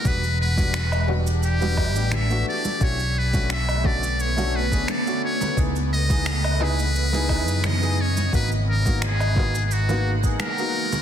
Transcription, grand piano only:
X:1
M:4/4
L:1/16
Q:"Swing 16ths" 1/4=87
K:Bmix
V:1 name="Grand piano"
[=G,B,=DF] z2 [G,B,DF] z2 [G,B,DF] z2 [G,B,DF] z [G,B,D=G]2 [A,B,DF]3 | [A,C=DF] z2 [A,CDF] z2 [A,CDF] z2 [A,CDF] z [A,CDG]2 [A,CDF]3 | [B,DEG] z2 [B,DEG] z2 [B,DEG] z2 [B,DEG] [B,DEG]3 [B,DEG] z2 | [^A,B,DF] z2 [A,B,DF] z2 [A,B,DF] z2 [A,B,DF] z [A,B,DG]2 [A,B,DF]3 |]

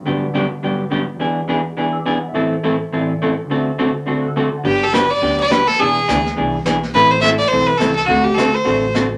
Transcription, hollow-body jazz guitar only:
X:1
M:4/4
L:1/8
Q:"Swing" 1/4=209
K:G
V:1 name="Hollow-body jazz guitar"
[G,,D,F,B,DG] z [G,,D,F,B,DG] z [G,,D,F,B,DG] z [G,,D,F,B,DG] z | [E,B,D^G] z [E,B,DG] z [E,B,DG] z [E,B,DG] z | [A,,E,A,CEA] z [A,,E,A,CEA] z [A,,E,A,CEA] z [A,,E,A,CEA] z | [D,A,CFA] z [D,A,CFA] z [D,A,CFA] z [D,A,CFA] z |
[D,F,B,DG] z [D,F,B,DG] z [D,F,B,DG] z [D,F,B,DG] z | [E,B,D^G] z [E,B,DG] z [E,B,DG] z [E,B,DG] z | [E,A,CEA] z [E,A,CEA] z [E,A,CEA] z [E,A,CEA] z | [D,A,CFA] z [D,A,CFA] z [D,A,CFA] z [D,A,CFA] z |]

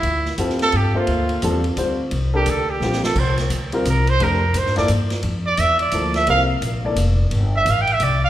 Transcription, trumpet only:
X:1
M:3/4
L:1/8
Q:"Swing" 1/4=173
K:Gdor
V:1 name="Trumpet"
E2 z A G F- | F2 z4 | z G A G2 A | c z3 B c |
B2 c d z2 | z d e d2 e | f z4 z | z e (3f g e d f |]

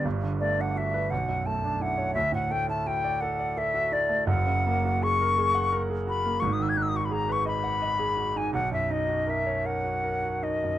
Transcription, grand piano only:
X:1
M:6/8
L:1/16
Q:3/8=57
K:D
V:1 name="Grand piano"
[G,,,G,,] D, A, D F B B,,, F,, A, D E c | D,, A,, A, E F d A d A F E A, | [K:F#mix] [F,,,F,,] C, A, F G A G f A G F A, | [G,,,G,,] D, D F G B d f d G F D |
B,,, F,, D F A c A F A F D F,, |]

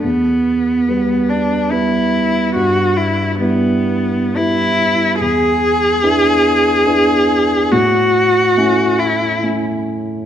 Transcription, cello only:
X:1
M:3/4
L:1/8
Q:1/4=71
K:Edor
V:1 name="Cello"
B,3 D E2 | F E B,2 E2 | ^G6 | F3 E z2 |]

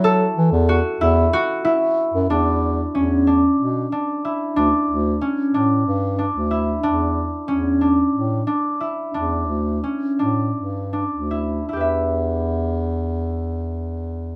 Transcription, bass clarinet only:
X:1
M:7/8
L:1/16
Q:1/4=93
K:Edor
V:1 name="Bass clarinet" clef=bass
F,2 E, E,,2 z E,,2 z4 z F,, | E,,4 E,,4 B,,2 z4 | D,, z D,,2 z2 A,,2 G,,3 D,,3 | E,,4 E,,4 A,,2 z4 |
E,,2 D,,2 z2 A,,2 G,,3 D,,3 | E,,12- E,,2 |]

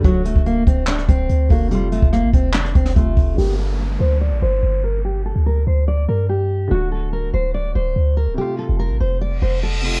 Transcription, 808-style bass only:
X:1
M:4/4
L:1/16
Q:1/4=144
K:Gm
V:1 name="808-style bass" clef=bass
D,,,3 D,,,3 D,,,4 D,,,2 D,,2 F,,,2- | F,,,3 F,,,2 A,,, F,,,4 F,,,2 F,,,2 F,,,2 | G,,,6 D,,3 B,,, G,,,2 G,,,4- | G,,,3 D,,3 D,,4 G,,6 |
D,,,6 D,,,4 D,,,2 D,,3 C,,, | z3 F,,,2 A,,, F,,,4 F,,,6 |]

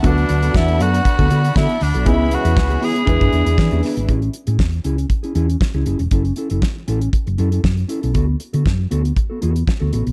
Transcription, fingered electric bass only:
X:1
M:4/4
L:1/16
Q:1/4=118
K:A
V:1 name="Fingered electric bass" clef=bass
D,,2 D,,2 E,,2 F,,2 z D,, D,2 D, z D,, B,,, | C,,3 E,, C,,2 z2 E,, F,, E,, E,, E, E,, z G,,, | A,,,2 z A,, E,,2 C,,2 z2 E,,2 z C,, F,,, E,,, | F,,,2 z F,,, z2 A,,,2 z F,,, F,,2 F,,2 z B,,, |
D,,2 z D, F,,2 D,,2 z2 E,,2 z D,, A,,, B,,, |]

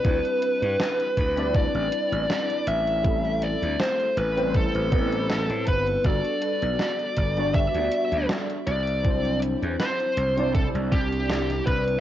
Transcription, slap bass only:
X:1
M:4/4
L:1/16
Q:"Swing 16ths" 1/4=80
K:Clyd
V:1 name="Slap bass" clef=bass
D,, z2 G,, z2 D,,3 A,,, z A,,, z2 A,,,2- | A,,,3 D,, z2 A,,,3 A,,, A,,,3 A,, G,,,2 | G,,, z2 B,,, z2 G,,,3 D,, z D,, z2 C,,2- | C,,3 E,, z2 C,,3 C,, C,,4 C,,2 |]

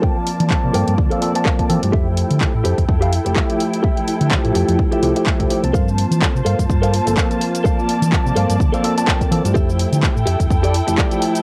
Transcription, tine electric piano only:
X:1
M:4/4
L:1/16
Q:"Swing 16ths" 1/4=126
K:Gdor
V:1 name="Tine electric piano"
[F,B,Ca]4 [F,B,Ca]4- [F,B,Ca] [F,B,CA] [F,B,CA] [F,B,Ca]3 [F,B,CA] [F,A,EG]- | [F,A,EG]4 [F,A,EG] z6 [F,A,EG] [F,E] [F,A,G]3- | [F,A,G]4 [F,A,EG]4- [F,A,EG] [F,A,EG] [F,A,EG] [F,A,EG]3 [F,A,EG] [F,B,Ca]- | [F,B,Ca]4 [F,B,CA] z6 [F,B,CA] A [F,B,Ca]3- |
[F,B,Ca]4 [F,B,Ca]4- [F,B,Ca] [F,B,CA] [F,B,CA] [F,B,Ca]3 [F,B,CA] [F,A,EG]- | [F,A,EG]4 [F,A,EG] z6 [F,A,EG] [F,A,EG] [F,A,EG]3 |]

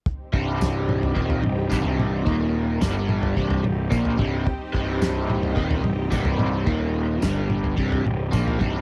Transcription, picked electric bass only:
X:1
M:4/4
L:1/8
Q:1/4=109
K:Cm
V:1 name="Picked electric bass" clef=bass
z C,,,3 E,,, C,,, C,,,2 | E,,,2 G,,,2 C,,, C,,, B,,, C,,, | z C,,,3 E,,, C,,, C,,,2 | E,,,2 G,,,2 C,,, C,,, B,,, C,,, |]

